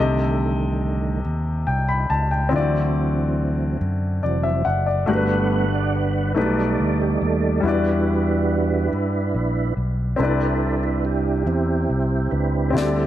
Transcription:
Already playing: C2 C3 D3 D#3 A3 C4 G4 A4
0.00 D#5
1.25 D#2
1.67 C2 G5
1.88 B5
2.10 C#2 A5
2.31 G5
2.49 D2 D3 C4 E4
2.53 E3 F#3 C4 F4 D5
2.60 F#4
3.81 F#2
4.23 F1 E3 F#3 C4 D5
4.43 E5
4.65 F#1 F#5
4.87 D5
5.06 G1 G2 G3 A3 B3 D4 F#4 G4 A#4 B4 F#5
5.16 B4
5.75 D5
5.95 B4
6.30 B4
6.35 B1 B2 G3 A3 D#4 G4 B4 D5
6.40 A4
6.80 D2
7.02 G4
7.21 D#2 A4
7.60 E2 E3 G3 D4 E4
7.65 E4 F#4 B4 D5
8.92 G2
9.34 A#1
9.77 B1
10.16 C2 C3 C4 D4 E4 A4 B4
10.21 B4 D5
10.83 B4
11.05 G4
11.46 E2 C4 E4 G4
11.90 C2
12.31 C#2 D4 E4 B4
12.70 D3 G3 C4 E4
12.75 D2 C4 E4 F#4 A4 D5, snare
12.81 G4

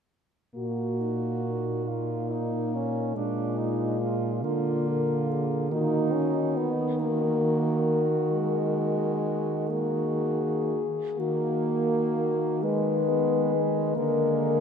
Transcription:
0.55 A#2 A#3 F#4
1.00 D#4
1.45 D#4
1.87 A#3 F4
2.31 D#4
2.74 C#4
3.15 A#2 G#3 D4 F4
3.58 D#4
4.01 F4
4.43 D3 A#3 F4
4.88 A#4
5.31 G#4
5.70 D#3 A#3 D#4 F#4
6.13 C#4
6.57 B3
7.00 A#3 F#4 A#4
8.32 G#3
9.70 A#3 F#4 G#4
11.18 D#3 A#3 F#4
12.63 G#3 B4
13.09 B3
13.54 G#3
13.96 D3 G#3 A#3 A#4

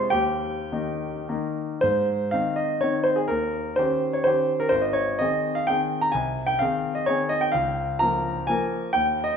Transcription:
Already playing: F4 C5 C6
0.10 D#2 G4 G5
0.72 D#3 A#3 D#4
1.29 D#3 A#3 D#4
1.81 G#2 C5
2.31 D#3 C4 D#4 F5
2.56 D#5
2.81 D#3 C4 D#4 C#5
3.04 C5
3.16 G#4
3.28 D#2 A#4
3.76 D#3 C#4 G4 C5
4.13 C#5
4.24 D#3 C#4 G4 C5
4.60 A#4
4.69 G#1 C5
4.81 D#5
4.93 C#5
5.19 D#3 C4 G#4 D#5
5.55 F5
5.67 D#3 C4 G#4 G5
6.01 A#5
6.12 C2 G#5
6.47 G5
6.59 D#3 C4 G#4 F5
6.95 D#5
7.06 D#3 C4 G#4 C#5
7.29 D#5
7.41 G5
7.52 C#2 F5
7.99 F3 A#3 A#4 A#5
8.47 F3 A#3 A#4 G#5
8.93 D#2 G5
9.24 D#5

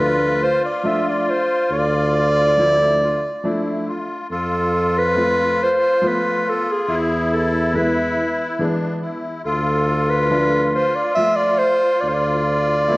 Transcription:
Already playing: D2 F3 A3 F4 B4
0.00 D4
0.43 C5
0.65 D5
0.83 F3 A3 D4 E5
1.09 D5
1.30 C5
1.70 D2 D5
2.57 F3 A3 D4 E4
3.01 F4
3.43 F3 A3 D4 E4
3.88 F4
4.30 F2 F4 A4
4.98 B4
5.15 F3 A3 C4
5.63 C5
6.01 F3 A3 B3
6.07 B4
6.49 A4
6.72 G#4
6.88 E2 E4
7.34 A4
7.74 E3 G#3 B3 B4
8.59 E3 G#3 B3 D4
9.02 E4
9.45 D2 F4 A4
10.10 B4
10.30 F3 A3 D4
10.75 C5
10.95 D5
11.15 F3 A3 E5
11.36 D5
11.58 C5
12.01 D2 D5
12.08 C5
12.14 D5
12.87 F3 A3 B3 E4

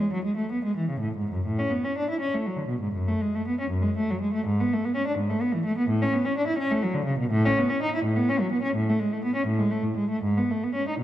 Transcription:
0.13 F#3
0.24 G#3
0.37 A3
0.52 B3
0.64 G#3
0.77 E3
0.90 C#3
1.00 A2
1.17 G#2
1.32 F#2
1.46 A2
1.59 C#4
1.70 B3
1.84 C#4
1.98 D4
2.10 E4
2.20 C#4
2.34 A3
2.46 F#3
2.57 D3
2.68 B2
2.81 G#2
2.93 F#2
3.08 A3
3.21 G#3
3.35 A3
3.47 B3
3.60 C#4
3.70 F#2
3.82 G#3
3.97 A3
4.10 F#3
4.21 G#3
4.34 A3
4.47 G#2
4.60 B3
4.73 A3
4.85 B3
4.95 C#4
5.07 D4
5.18 G#2
5.30 A3
5.41 B3
5.53 E3
5.65 A3
5.77 B3
5.89 A2
6.02 C#4
6.13 B3
6.25 C#4
6.38 D4
6.47 E4
6.58 C#4
6.71 A3
6.83 F#3
6.94 D3
7.05 C#3
7.19 B2
7.30 A2
7.45 C#4
7.58 B3
7.69 C#4
7.83 D#4
7.96 E4
8.04 A2
8.16 B3
8.29 C#4
8.40 F#3
8.52 B3
8.62 C#4
8.75 A2
8.89 A3
8.99 G#3
9.13 A3
9.24 B3
9.35 C#4
9.46 A2
9.59 G#3
9.71 A3
9.83 A2
9.97 G#3
10.10 A3
10.23 G#2
10.38 B3
10.51 A3
10.63 B3
10.74 C#4
10.88 D#4
10.99 B2

